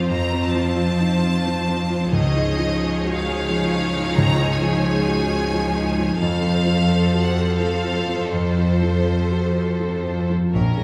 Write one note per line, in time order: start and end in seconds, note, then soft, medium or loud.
0.00 0.10 F2 soft
0.00 2.09 F2 soft
0.00 0.23 F3 soft
0.00 2.09 F3 soft
0.00 0.13 C4 soft
0.00 0.54 C4 soft
0.00 2.09 C4 soft
0.00 0.12 D#4 soft
0.00 0.12 F4 soft
0.00 0.32 F4 soft
0.00 2.09 F4 soft
0.00 0.99 C5 soft
0.00 2.09 C5 soft
0.00 3.10 F5 soft
0.08 2.09 F2 soft
0.08 4.01 F3 soft
0.08 0.42 A#5 medium
0.33 0.69 C4 soft
0.33 0.77 F4 soft
0.43 2.13 A5 medium
0.55 0.91 F3 soft
0.55 1.91 C4 soft
0.77 1.13 F4 soft
0.77 4.68 F4 soft
1.00 1.23 D#4 soft
1.00 1.45 C5 soft
1.24 1.59 F4 soft
1.46 1.82 F3 soft
1.46 2.16 C5 soft
1.69 2.04 C4 soft
1.90 2.13 F3 soft
1.90 2.17 C4 soft
2.13 4.12 C#2 medium
2.13 6.17 C#2 medium
2.13 4.15 C#3 soft
2.13 6.17 F3 medium
2.13 6.21 D#4 medium
2.13 6.17 G#4 medium
2.13 6.21 C#5 soft
2.13 3.12 D#5 medium
2.36 4.38 G#3 soft
2.36 2.72 D#4 soft
2.58 2.94 F3 soft
2.58 3.93 D#4 soft
2.82 6.72 C#4 soft
2.82 3.17 G#4 soft
3.04 3.26 F#4 soft
3.04 3.48 G#4 soft
3.15 4.15 F5 medium
3.27 3.63 G#4 soft
3.27 5.29 D#5 soft
3.49 3.85 F3 soft
3.49 5.06 G#4 soft
3.73 4.08 D#4 soft
3.94 4.30 F3 soft
3.94 4.60 D#4 soft
4.15 6.18 C#2 medium
4.15 6.24 C#3 medium
4.15 4.49 A#5 medium
4.39 6.23 G#3 soft
4.39 4.75 D#4 soft
4.51 6.21 G#5 medium
4.61 4.98 F3 soft
4.61 5.97 D#4 soft
4.85 5.21 G#4 soft
5.07 5.30 F#4 soft
5.07 5.52 G#4 soft
5.30 5.66 G#4 soft
5.30 6.24 D#5 soft
5.53 5.89 F3 soft
5.53 6.24 G#4 soft
5.75 6.12 D#4 soft
5.98 6.21 F3 soft
5.98 6.24 D#4 soft
6.19 10.29 F2 soft
6.19 8.28 F2 soft
6.19 10.30 F3 medium
6.19 8.30 F3 medium
6.19 10.30 A4 soft
6.19 10.30 C5 soft
6.19 7.22 F5 medium
6.43 8.55 C4 soft
6.43 6.80 F4 soft
6.65 7.03 F3 soft
6.88 7.26 A4 soft
6.88 7.82 A4 soft
7.13 7.36 F#4 soft
7.13 7.58 C5 soft
7.24 7.59 F#5 medium
7.36 7.74 A4 soft
7.36 9.55 F5 soft
7.57 7.98 F3 soft
7.57 9.30 C5 soft
7.57 8.29 F5 medium
7.83 8.22 F4 soft
7.83 9.05 A4 soft
8.07 8.47 F3 soft
8.07 8.81 F4 soft
8.31 10.51 F2 soft
8.31 10.84 F3 soft
8.31 10.17 C5 medium
8.56 10.57 C4 soft
8.56 8.97 F4 soft
8.82 9.21 F3 soft
8.82 10.31 F4 soft
9.07 10.04 A4 soft
9.07 9.46 A4 soft
9.31 9.56 F#4 soft
9.31 9.80 C5 soft
9.55 9.95 A4 soft
9.55 10.84 F5 soft
9.80 10.20 F3 soft
9.80 10.58 C5 soft
10.06 10.45 F4 soft
10.06 10.58 A4 soft
10.30 10.54 F3 soft
10.30 10.84 F4 soft
10.53 10.63 A#1 medium
10.53 10.84 A#1 soft
10.53 10.62 A#2 soft
10.53 10.84 A#2 soft
10.53 10.84 C#4 soft
10.53 10.84 A#4 medium
10.53 10.63 C#5 soft
10.78 10.84 G#3 soft
10.78 10.84 G#4 soft